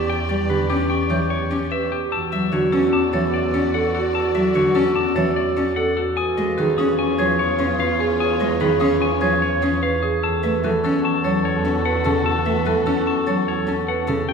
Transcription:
Already playing: double bass section E2, marimba G4, clean electric guitar G4, violin section G4 D5, clarinet G4
0.10 clean electric guitar G5
0.29 cello G3, clean electric guitar D5
0.49 cello D3, marimba G4, clean electric guitar B4
0.70 marimba C#4, cello C#4, clean electric guitar G4, glockenspiel D6
0.90 clean electric guitar G5, glockenspiel C#6
1.10 cello E3, clean electric guitar G4, marimba C#5, glockenspiel G6
1.30 clean electric guitar C#5
1.51 cello C#4, clean electric guitar G4
1.71 marimba B4, clean electric guitar E5
1.91 marimba G4, clean electric guitar G4
2.12 double bass section E2, violin section F#4 D5, clarinet F#4, clean electric guitar A5, glockenspiel E6
2.33 cello F#3, clean electric guitar E5
2.52 cello D3, marimba F#4, clean electric guitar C#5
2.72 marimba C#4, cello C#4, clean electric guitar A4, glockenspiel E6
2.93 clean electric guitar A5, glockenspiel D6
3.13 cello E3, clean electric guitar A4, marimba C#5, glockenspiel A6
3.34 clean electric guitar D5
3.54 cello C#4, clean electric guitar A4
3.74 marimba A4, clean electric guitar F#5
3.94 marimba F#4, clean electric guitar A4
4.15 clean electric guitar A5, glockenspiel E6
4.35 cello F#3, clean electric guitar E5
4.55 cello D3, marimba F#4, clean electric guitar C#5
4.75 cello C#4, marimba C#4, clean electric guitar A4, glockenspiel E6
4.95 clean electric guitar A5, glockenspiel D6
5.16 cello E3, clean electric guitar A4, marimba C#5, glockenspiel A6
5.36 clean electric guitar D5
5.57 cello C#4, clean electric guitar A4
5.76 marimba A4, clean electric guitar F#5
5.97 marimba F#4, clean electric guitar A4
6.17 double bass section E2, violin section F4 C#5, clarinet B4, clean electric guitar G#5, glockenspiel D#6
6.38 cello G#3, clean electric guitar D#5
6.58 cello D#3, marimba G#4, clean electric guitar B4
6.78 marimba C#4, cello C#4, clean electric guitar G#4, glockenspiel D#6
6.98 clean electric guitar G#5, glockenspiel C#6
7.18 cello F3, clean electric guitar G#4, marimba C#5, glockenspiel G#6
7.39 clean electric guitar C#5
7.59 cello C#4, clean electric guitar G#4
7.79 marimba B4, clean electric guitar F5
8.00 marimba G#4, clean electric guitar G#4
8.20 clean electric guitar G#5, glockenspiel D#6
8.40 cello G#3, clean electric guitar D#5
8.61 cello D#3, marimba G#4, clean electric guitar B4
8.80 cello C#4, marimba C#4, clean electric guitar G#4, glockenspiel D#6
9.01 clean electric guitar G#5, glockenspiel C#6
9.21 cello F3, clean electric guitar G#4, marimba C#5, glockenspiel G#6
9.42 clean electric guitar C#5
9.62 cello C#4, clean electric guitar G#4
9.82 marimba B4, clean electric guitar F5
10.03 clean electric guitar G#4, marimba G#4
10.23 double bass section E2, violin section F#4 A4, clarinet A4, clean electric guitar A5, glockenspiel E6
10.43 cello A3, marimba B4, clean electric guitar E5
10.64 cello E3, marimba A4, clean electric guitar B4
10.84 marimba C#4, cello C#4, clean electric guitar A4, glockenspiel E6
11.04 clean electric guitar A5, glockenspiel C#6
11.24 cello F#3, clean electric guitar A4, marimba C#5, glockenspiel A6
11.45 clean electric guitar C#5
11.65 cello C#4, clean electric guitar A4
11.85 marimba B4, clean electric guitar F#5
12.05 cello C#3, marimba A4, clean electric guitar A4
12.26 clean electric guitar A5, glockenspiel E6
12.46 cello A3, marimba B4, clean electric guitar E5
12.66 cello E3, marimba A4, clean electric guitar B4
12.86 marimba C#4, cello C#4, clean electric guitar A4, glockenspiel E6
13.07 clean electric guitar A5, glockenspiel C#6
13.27 cello F#3, clean electric guitar A4, marimba C#5, glockenspiel A6
13.48 clean electric guitar C#5
13.67 cello C#4, clean electric guitar A4
13.88 marimba B4, clean electric guitar F#5
14.08 cello C#3, marimba A4, clean electric guitar A4
14.28 double bass section E2, violin section G4 D5, marimba G4, clarinet G4, clean electric guitar G5

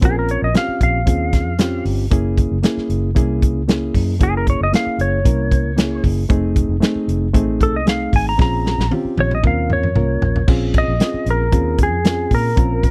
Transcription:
0.01 fingered electric bass A#1, reed electric piano C4 C#4 F4 A#4, electric slide guitar G#4, kick, closed hi-hat
0.19 electric slide guitar A#4
0.29 electric slide guitar C#5, closed hi-hat
0.42 fingered electric bass A#1, electric slide guitar D#5
0.54 reed electric piano C4 C#4 F4 G4, electric slide guitar F5, snare, closed hi-hat
0.68 muted fingered electric bass stroke
0.81 fingered electric bass A#1, electric slide guitar F5, kick, closed hi-hat
1.06 fingered electric bass D#2, reed electric piano C4 C#4 F4 G#4, kick, closed hi-hat
1.33 kick, snare, closed hi-hat
1.47 fingered electric bass F2
1.58 reed electric piano C4 C#4 F4 G4, snare, closed hi-hat
1.85 fingered electric bass G1, open hi-hat
2.11 fingered electric bass F#1, reed electric piano A#3 C#4 E4 G#4, kick, closed hi-hat
2.38 kick, closed hi-hat
2.51 fingered electric bass F#1
2.63 reed electric piano A#3 C#4 E4 G#4, snare, closed hi-hat
2.77 muted fingered electric bass stroke, snare
2.89 fingered electric bass F#1, closed hi-hat
3.15 fingered electric bass C2, reed electric piano A#3 C#4 E4 G#4, kick, closed hi-hat
3.42 kick, closed hi-hat
3.56 fingered electric bass C#2
3.68 reed electric piano A#3 C#4 E4 G#4, snare, closed hi-hat
3.94 fingered electric bass F#2, kick, open hi-hat
4.20 fingered electric bass F#1, reed electric piano A#3 C#4 E4 G#4, electric slide guitar G#4, kick, closed hi-hat
4.37 electric slide guitar A#4
4.47 electric slide guitar C#5, kick, closed hi-hat
4.61 fingered electric bass F#1, electric slide guitar D#5
4.72 reed electric piano A#3 C#4 E4 G#4, electric slide guitar F5, snare, closed hi-hat
4.87 muted fingered electric bass stroke
4.98 fingered electric bass F#1, electric slide guitar C#5, closed hi-hat
5.24 fingered electric bass C2, reed electric piano A#3 C#4 E4 A#4, kick, closed hi-hat
5.51 kick, closed hi-hat
5.65 fingered electric bass C#2
5.76 reed electric piano A#3 C#4 E4 G#4, snare, closed hi-hat
6.04 fingered electric bass F#1, kick, open hi-hat
6.29 fingered electric bass F1, reed electric piano A3 C4 D#4 G#4, kick, closed hi-hat
6.56 kick, closed hi-hat
6.69 fingered electric bass F1
6.80 reed electric piano A3 C4 D#4 G#4, snare, closed hi-hat
6.95 muted fingered electric bass stroke
7.08 fingered electric bass F1, closed hi-hat
7.33 fingered electric bass A1, reed electric piano A3 C4 D#4 G#4, kick, closed hi-hat
7.61 electric slide guitar A4, kick, closed hi-hat
7.73 fingered electric bass C2, electric slide guitar D#5
7.85 reed electric piano A3 C4 D#4 G#4, electric slide guitar F5, snare, closed hi-hat
8.13 fingered electric bass G#1, electric slide guitar G#5, kick, open hi-hat
8.29 electric slide guitar A#5
8.38 fingered electric bass A#1, reed electric piano C4 C#4 F4 G#4, electric slide guitar A#5, kick, snare
8.66 snare
8.78 fingered electric bass A#1, snare
8.91 reed electric piano C4 C#4 F4 G4, high tom
9.05 muted fingered electric bass stroke
9.18 fingered electric bass A#1, electric slide guitar C#5, high tom
9.31 electric slide guitar D#5, mid tom
9.43 fingered electric bass D#2, reed electric piano C4 C#4 F4 A#4, kick, mid tom
9.47 electric slide guitar F5
9.70 electric slide guitar C#5, mid tom
9.83 fingered electric bass F2, mid tom
9.95 fingered electric bass C2, reed electric piano A#3 C#4 F4 A#4, mid tom
10.22 fingered electric bass A#1, floor tom
10.36 floor tom
10.47 fingered electric bass A#1, reed electric piano C4 C#4 F4 G#4, kick, crash
10.74 kick, closed hi-hat
10.78 electric slide guitar D#5
10.88 fingered electric bass A#1
10.99 reed electric piano C4 C#4 F4 G#4, snare, closed hi-hat
11.14 muted fingered electric bass stroke
11.26 fingered electric bass A#1, closed hi-hat
11.30 electric slide guitar A#4
11.52 fingered electric bass D#2, reed electric piano C4 C#4 F4 G#4, kick, closed hi-hat
11.78 kick, closed hi-hat
11.83 electric slide guitar G#4
11.92 fingered electric bass F2
12.04 reed electric piano C4 C#4 F4 G#4, snare, closed hi-hat
12.31 fingered electric bass A#2, electric slide guitar A#4, kick, open hi-hat
12.56 fingered electric bass A#1, reed electric piano C4 C#4 F4 A#4, kick, closed hi-hat
12.83 kick, closed hi-hat

